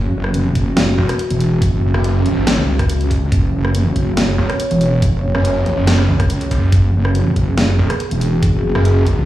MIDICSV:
0, 0, Header, 1, 5, 480
1, 0, Start_track
1, 0, Tempo, 425532
1, 1825, Time_signature, 4, 2, 24, 8
1, 10437, End_track
2, 0, Start_track
2, 0, Title_t, "Ambient pad"
2, 0, Program_c, 0, 92
2, 0, Note_on_c, 0, 61, 86
2, 0, Note_on_c, 0, 66, 80
2, 0, Note_on_c, 0, 76, 100
2, 3732, Note_off_c, 0, 76, 0
2, 3745, Note_on_c, 0, 73, 94
2, 7572, Note_off_c, 0, 73, 0
2, 7587, Note_on_c, 0, 68, 97
2, 10437, Note_off_c, 0, 61, 0
2, 10437, Note_off_c, 0, 66, 0
2, 10437, Note_off_c, 0, 68, 0
2, 10437, End_track
3, 0, Start_track
3, 0, Title_t, "Detuned saw bass"
3, 0, Program_c, 1, 39
3, 1106, Note_on_c, 1, 28, 101
3, 1211, Note_off_c, 1, 28, 0
3, 2192, Note_on_c, 1, 30, 98
3, 2651, Note_off_c, 1, 30, 0
3, 2671, Note_on_c, 1, 32, 94
3, 2891, Note_off_c, 1, 32, 0
3, 4945, Note_on_c, 1, 28, 100
3, 5051, Note_off_c, 1, 28, 0
3, 6031, Note_on_c, 1, 30, 96
3, 6491, Note_off_c, 1, 30, 0
3, 6511, Note_on_c, 1, 30, 97
3, 6847, Note_off_c, 1, 30, 0
3, 7345, Note_on_c, 1, 30, 102
3, 7567, Note_off_c, 1, 30, 0
3, 8785, Note_on_c, 1, 28, 104
3, 8891, Note_off_c, 1, 28, 0
3, 9872, Note_on_c, 1, 30, 95
3, 10331, Note_off_c, 1, 30, 0
3, 10437, End_track
4, 0, Start_track
4, 0, Title_t, "Wobble bass"
4, 0, Program_c, 2, 39
4, 0, Note_on_c, 2, 30, 104
4, 127, Note_off_c, 2, 30, 0
4, 145, Note_on_c, 2, 30, 97
4, 607, Note_off_c, 2, 30, 0
4, 625, Note_on_c, 2, 30, 98
4, 1087, Note_off_c, 2, 30, 0
4, 1471, Note_on_c, 2, 28, 105
4, 1931, Note_off_c, 2, 28, 0
4, 1951, Note_on_c, 2, 30, 95
4, 2171, Note_off_c, 2, 30, 0
4, 2911, Note_on_c, 2, 37, 101
4, 3727, Note_off_c, 2, 37, 0
4, 3745, Note_on_c, 2, 30, 102
4, 3967, Note_off_c, 2, 30, 0
4, 3986, Note_on_c, 2, 30, 97
4, 4447, Note_off_c, 2, 30, 0
4, 4465, Note_on_c, 2, 30, 96
4, 4927, Note_off_c, 2, 30, 0
4, 5311, Note_on_c, 2, 28, 97
4, 5771, Note_off_c, 2, 28, 0
4, 5791, Note_on_c, 2, 30, 99
4, 6011, Note_off_c, 2, 30, 0
4, 6865, Note_on_c, 2, 37, 97
4, 7087, Note_off_c, 2, 37, 0
4, 7105, Note_on_c, 2, 37, 99
4, 7327, Note_off_c, 2, 37, 0
4, 7585, Note_on_c, 2, 30, 98
4, 7807, Note_off_c, 2, 30, 0
4, 7824, Note_on_c, 2, 30, 95
4, 8287, Note_off_c, 2, 30, 0
4, 8305, Note_on_c, 2, 30, 94
4, 8767, Note_off_c, 2, 30, 0
4, 9152, Note_on_c, 2, 28, 102
4, 9611, Note_off_c, 2, 28, 0
4, 9631, Note_on_c, 2, 30, 98
4, 9851, Note_off_c, 2, 30, 0
4, 10352, Note_on_c, 2, 37, 101
4, 10437, Note_off_c, 2, 37, 0
4, 10437, End_track
5, 0, Start_track
5, 0, Title_t, "Drums"
5, 271, Note_on_c, 9, 37, 75
5, 384, Note_off_c, 9, 37, 0
5, 385, Note_on_c, 9, 42, 86
5, 498, Note_off_c, 9, 42, 0
5, 625, Note_on_c, 9, 36, 69
5, 625, Note_on_c, 9, 42, 53
5, 738, Note_off_c, 9, 36, 0
5, 738, Note_off_c, 9, 42, 0
5, 865, Note_on_c, 9, 38, 127
5, 865, Note_on_c, 9, 42, 80
5, 978, Note_off_c, 9, 38, 0
5, 978, Note_off_c, 9, 42, 0
5, 1232, Note_on_c, 9, 37, 74
5, 1232, Note_on_c, 9, 42, 55
5, 1345, Note_off_c, 9, 37, 0
5, 1345, Note_off_c, 9, 42, 0
5, 1346, Note_on_c, 9, 42, 85
5, 1459, Note_off_c, 9, 42, 0
5, 1472, Note_on_c, 9, 42, 57
5, 1585, Note_off_c, 9, 42, 0
5, 1585, Note_on_c, 9, 46, 93
5, 1698, Note_off_c, 9, 46, 0
5, 1825, Note_on_c, 9, 36, 125
5, 1825, Note_on_c, 9, 42, 80
5, 1938, Note_off_c, 9, 36, 0
5, 1938, Note_off_c, 9, 42, 0
5, 2192, Note_on_c, 9, 37, 78
5, 2305, Note_off_c, 9, 37, 0
5, 2305, Note_on_c, 9, 42, 78
5, 2418, Note_off_c, 9, 42, 0
5, 2546, Note_on_c, 9, 42, 53
5, 2659, Note_off_c, 9, 42, 0
5, 2786, Note_on_c, 9, 38, 125
5, 2786, Note_on_c, 9, 42, 81
5, 2899, Note_off_c, 9, 38, 0
5, 2899, Note_off_c, 9, 42, 0
5, 2912, Note_on_c, 9, 37, 53
5, 3025, Note_off_c, 9, 37, 0
5, 3151, Note_on_c, 9, 36, 105
5, 3152, Note_on_c, 9, 37, 75
5, 3152, Note_on_c, 9, 42, 51
5, 3264, Note_off_c, 9, 36, 0
5, 3265, Note_off_c, 9, 37, 0
5, 3265, Note_off_c, 9, 42, 0
5, 3266, Note_on_c, 9, 42, 80
5, 3379, Note_off_c, 9, 42, 0
5, 3393, Note_on_c, 9, 42, 54
5, 3505, Note_off_c, 9, 42, 0
5, 3505, Note_on_c, 9, 36, 69
5, 3506, Note_on_c, 9, 46, 93
5, 3618, Note_off_c, 9, 36, 0
5, 3618, Note_off_c, 9, 46, 0
5, 3745, Note_on_c, 9, 36, 123
5, 3746, Note_on_c, 9, 42, 78
5, 3858, Note_off_c, 9, 36, 0
5, 3859, Note_off_c, 9, 42, 0
5, 4112, Note_on_c, 9, 37, 79
5, 4225, Note_off_c, 9, 37, 0
5, 4226, Note_on_c, 9, 42, 79
5, 4339, Note_off_c, 9, 42, 0
5, 4465, Note_on_c, 9, 36, 62
5, 4466, Note_on_c, 9, 42, 50
5, 4578, Note_off_c, 9, 36, 0
5, 4578, Note_off_c, 9, 42, 0
5, 4705, Note_on_c, 9, 38, 117
5, 4705, Note_on_c, 9, 42, 79
5, 4818, Note_off_c, 9, 38, 0
5, 4818, Note_off_c, 9, 42, 0
5, 5071, Note_on_c, 9, 37, 75
5, 5071, Note_on_c, 9, 42, 48
5, 5184, Note_off_c, 9, 37, 0
5, 5184, Note_off_c, 9, 42, 0
5, 5186, Note_on_c, 9, 42, 76
5, 5298, Note_off_c, 9, 42, 0
5, 5312, Note_on_c, 9, 42, 51
5, 5425, Note_off_c, 9, 42, 0
5, 5425, Note_on_c, 9, 46, 93
5, 5538, Note_off_c, 9, 46, 0
5, 5665, Note_on_c, 9, 36, 118
5, 5666, Note_on_c, 9, 42, 77
5, 5778, Note_off_c, 9, 36, 0
5, 5779, Note_off_c, 9, 42, 0
5, 6031, Note_on_c, 9, 37, 82
5, 6144, Note_off_c, 9, 37, 0
5, 6146, Note_on_c, 9, 42, 80
5, 6258, Note_off_c, 9, 42, 0
5, 6385, Note_on_c, 9, 42, 50
5, 6498, Note_off_c, 9, 42, 0
5, 6626, Note_on_c, 9, 38, 118
5, 6626, Note_on_c, 9, 42, 78
5, 6738, Note_off_c, 9, 38, 0
5, 6738, Note_off_c, 9, 42, 0
5, 6752, Note_on_c, 9, 37, 60
5, 6865, Note_off_c, 9, 37, 0
5, 6991, Note_on_c, 9, 36, 102
5, 6992, Note_on_c, 9, 37, 80
5, 6992, Note_on_c, 9, 42, 51
5, 7104, Note_off_c, 9, 36, 0
5, 7105, Note_off_c, 9, 37, 0
5, 7105, Note_off_c, 9, 42, 0
5, 7105, Note_on_c, 9, 42, 77
5, 7218, Note_off_c, 9, 42, 0
5, 7231, Note_on_c, 9, 42, 50
5, 7344, Note_off_c, 9, 42, 0
5, 7345, Note_on_c, 9, 36, 62
5, 7345, Note_on_c, 9, 46, 91
5, 7458, Note_off_c, 9, 36, 0
5, 7458, Note_off_c, 9, 46, 0
5, 7585, Note_on_c, 9, 36, 114
5, 7585, Note_on_c, 9, 42, 77
5, 7697, Note_off_c, 9, 36, 0
5, 7698, Note_off_c, 9, 42, 0
5, 7951, Note_on_c, 9, 37, 81
5, 8064, Note_off_c, 9, 37, 0
5, 8065, Note_on_c, 9, 42, 79
5, 8178, Note_off_c, 9, 42, 0
5, 8305, Note_on_c, 9, 36, 63
5, 8305, Note_on_c, 9, 42, 50
5, 8418, Note_off_c, 9, 36, 0
5, 8418, Note_off_c, 9, 42, 0
5, 8545, Note_on_c, 9, 38, 112
5, 8545, Note_on_c, 9, 42, 80
5, 8658, Note_off_c, 9, 38, 0
5, 8658, Note_off_c, 9, 42, 0
5, 8911, Note_on_c, 9, 37, 83
5, 8911, Note_on_c, 9, 42, 51
5, 9024, Note_off_c, 9, 37, 0
5, 9024, Note_off_c, 9, 42, 0
5, 9025, Note_on_c, 9, 42, 81
5, 9138, Note_off_c, 9, 42, 0
5, 9152, Note_on_c, 9, 42, 53
5, 9264, Note_off_c, 9, 42, 0
5, 9265, Note_on_c, 9, 46, 100
5, 9378, Note_off_c, 9, 46, 0
5, 9505, Note_on_c, 9, 36, 122
5, 9505, Note_on_c, 9, 42, 81
5, 9618, Note_off_c, 9, 36, 0
5, 9618, Note_off_c, 9, 42, 0
5, 9871, Note_on_c, 9, 37, 82
5, 9984, Note_off_c, 9, 37, 0
5, 9985, Note_on_c, 9, 42, 85
5, 10098, Note_off_c, 9, 42, 0
5, 10225, Note_on_c, 9, 36, 61
5, 10225, Note_on_c, 9, 42, 53
5, 10338, Note_off_c, 9, 36, 0
5, 10338, Note_off_c, 9, 42, 0
5, 10437, End_track
0, 0, End_of_file